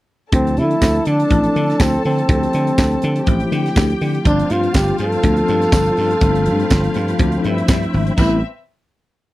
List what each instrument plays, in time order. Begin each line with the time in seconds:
0.32 slap bass D2, tine electric piano F3 A3 C4 E4, trombone C4, string section A4 A5, kick, closed hi-hat
0.47 closed hi-hat
0.57 slap bass D3, trombone E4, closed hi-hat
0.71 closed hi-hat
0.82 slap bass D2, kick, snare, clap, tambourine
0.95 closed hi-hat
1.05 slap bass D3, trombone D4, closed hi-hat
1.20 closed hi-hat
1.30 slap bass A1, tine electric piano F3 A3 C4 E4, kick, closed hi-hat
1.43 closed hi-hat
1.56 slap bass D3, closed hi-hat
1.70 snare, closed hi-hat
1.80 slap bass D2, trombone C4, kick, snare, clap, tambourine
1.94 closed hi-hat
2.04 slap bass D3, trombone C4, open hi-hat
2.18 closed hi-hat
2.28 slap bass D2, tine electric piano F3 A3 C4 G4, kick, closed hi-hat
2.43 closed hi-hat
2.53 slap bass D3, closed hi-hat
2.67 closed hi-hat
2.78 slap bass D2, kick, snare, clap, tambourine
2.91 closed hi-hat
3.02 slap bass D3, closed hi-hat
3.16 closed hi-hat
3.26 slap bass A1, tine electric piano F3 A3 C4 E4, string section G4 G5, kick, closed hi-hat
3.40 closed hi-hat
3.52 slap bass D3, closed hi-hat
3.66 snare, closed hi-hat
3.76 slap bass D2, kick, snare, clap, tambourine
3.90 closed hi-hat
4.01 slap bass D3, open hi-hat
4.15 closed hi-hat
4.25 slap bass G1, tonewheel organ F3 C5 G5 A5, tine electric piano F3 A3 C4 D4, trombone D4, string section F4 F5, kick, closed hi-hat
4.39 closed hi-hat
4.50 slap bass G2, trombone F4, closed hi-hat
4.63 closed hi-hat
4.74 slap bass G1, trombone G4, kick, snare, clap, tambourine
4.88 closed hi-hat
4.98 slap bass G2, trombone A4, closed hi-hat
5.12 closed hi-hat
5.23 slap bass D2, tine electric piano F3 A3 B3 D4, kick, closed hi-hat
5.31 tine electric piano C4
5.37 closed hi-hat
5.48 slap bass G2, closed hi-hat
5.62 snare, closed hi-hat
5.72 slap bass G1, kick, snare, clap, tambourine
5.86 closed hi-hat
5.97 slap bass G2, open hi-hat
6.11 closed hi-hat
6.21 slap bass G1, tine electric piano F3 A3 C4 D4, tonewheel organ B5, kick, closed hi-hat
6.35 closed hi-hat
6.45 slap bass G2, closed hi-hat
6.59 closed hi-hat
6.70 slap bass G1, kick, snare, clap, tambourine
6.83 closed hi-hat
6.94 slap bass G2, closed hi-hat
7.08 closed hi-hat
7.19 slap bass D2, tine electric piano F3 A3 C4 D4, kick, closed hi-hat
7.32 closed hi-hat
7.43 slap bass G2, string section E4 E5, closed hi-hat
7.58 closed hi-hat
7.68 slap bass G2, kick, snare, clap, tambourine
7.83 closed hi-hat
7.93 slap bass G#1, open hi-hat
8.07 closed hi-hat
8.18 slap bass A1, tine electric piano G3 B3 C4 E4, string section C4 B4 E5, tonewheel organ C4 A4 B4 G5, trombone E4, kick, crash, tambourine